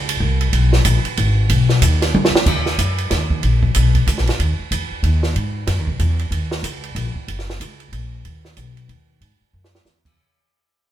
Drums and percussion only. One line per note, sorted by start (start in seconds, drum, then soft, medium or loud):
0.09 ride medium
0.41 ride soft
0.53 ride medium
0.73 snare soft
0.85 hi-hat pedal medium
0.85 ride medium
1.05 ride soft
1.17 ride medium
1.49 ride medium
1.69 snare soft
1.82 hi-hat pedal medium
1.82 ride medium
2.02 snare soft
2.02 ride soft
2.14 high tom soft
2.25 snare medium
2.36 snare medium
2.46 kick medium
2.46 crash medium
2.66 snare soft
2.79 hi-hat pedal medium
2.79 ride medium
2.98 ride soft
3.10 snare soft
3.10 ride medium
3.30 kick soft
3.43 ride medium
3.63 kick soft
3.75 hi-hat pedal medium
3.75 ride medium
3.95 kick soft
3.95 ride soft
4.07 hi-hat pedal medium
4.07 ride medium
4.18 snare soft
4.27 snare soft
4.27 ride soft
4.40 ride medium
4.72 hi-hat pedal medium
4.72 ride medium
5.04 ride medium
5.23 snare soft
5.36 ride medium
5.67 snare soft
5.67 ride medium
5.87 kick soft
5.99 hi-hat pedal soft
5.99 ride medium
6.19 ride soft
6.32 ride medium
6.51 snare soft
6.64 hi-hat pedal medium
6.64 ride medium
6.84 ride soft
6.96 ride medium
7.16 kick soft
7.28 ride medium
7.39 snare soft
7.50 snare soft
7.61 hi-hat pedal medium
7.61 ride medium
7.80 ride soft
7.93 ride medium
8.25 ride medium
8.45 snare soft
8.57 hi-hat pedal medium
8.57 ride medium
8.77 ride soft
8.89 ride medium
9.21 ride medium
9.64 snare medium
9.75 snare medium
9.86 snare soft
9.86 hi-hat pedal soft
10.05 kick medium
10.05 crash medium